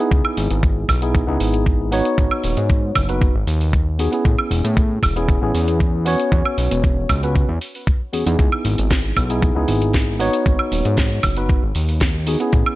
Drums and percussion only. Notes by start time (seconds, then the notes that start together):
0.11 kick, closed hi-hat
0.25 high woodblock
0.37 open hi-hat
0.51 closed hi-hat
0.63 kick, closed hi-hat
0.89 kick, open hi-hat, high woodblock
1.02 closed hi-hat
1.15 kick, closed hi-hat
1.40 open hi-hat
1.54 closed hi-hat
1.66 kick, closed hi-hat
1.92 open hi-hat
2.05 closed hi-hat
2.18 kick, closed hi-hat
2.31 high woodblock
2.44 open hi-hat
2.57 closed hi-hat
2.70 kick, closed hi-hat
2.95 kick, open hi-hat, high woodblock
3.09 closed hi-hat
3.21 kick, closed hi-hat
3.47 open hi-hat
3.61 open hi-hat
3.73 kick, closed hi-hat
3.99 open hi-hat
4.13 closed hi-hat
4.25 kick, closed hi-hat
4.39 high woodblock
4.51 open hi-hat
4.65 closed hi-hat
4.77 kick, closed hi-hat
5.03 kick, open hi-hat, high woodblock
5.16 closed hi-hat
5.29 kick, closed hi-hat
5.55 open hi-hat
5.68 closed hi-hat
5.80 kick, closed hi-hat
6.06 open hi-hat
6.20 closed hi-hat
6.32 kick, closed hi-hat
6.45 high woodblock
6.58 open hi-hat
6.71 closed hi-hat
6.84 kick, closed hi-hat
7.09 kick, open hi-hat, high woodblock
7.23 closed hi-hat
7.35 kick, closed hi-hat
7.61 open hi-hat
7.75 open hi-hat
7.87 kick, closed hi-hat
8.13 open hi-hat
8.27 closed hi-hat
8.39 kick, closed hi-hat
8.52 high woodblock
8.65 open hi-hat
8.78 closed hi-hat
8.91 kick, snare, closed hi-hat
9.17 kick, open hi-hat, high woodblock
9.30 closed hi-hat
9.42 kick, closed hi-hat
9.68 open hi-hat
9.82 closed hi-hat
9.94 kick, snare, closed hi-hat
10.20 open hi-hat
10.33 closed hi-hat
10.46 kick, closed hi-hat
10.59 high woodblock
10.72 open hi-hat
10.85 closed hi-hat
10.98 kick, snare, closed hi-hat
11.23 kick, open hi-hat, high woodblock
11.37 closed hi-hat
11.49 kick, closed hi-hat
11.75 open hi-hat
11.89 open hi-hat
12.01 kick, snare, closed hi-hat
12.27 open hi-hat
12.40 closed hi-hat
12.53 kick, closed hi-hat
12.66 high woodblock